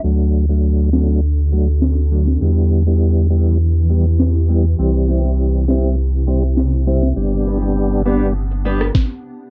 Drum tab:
CP |------x-----x---|------------x---|------x-----x---|----------------|
SD |------o-----o--o|------------o---|------o-----o--o|-----------ro---|
BD |----------------|----------------|----------------|------------o---|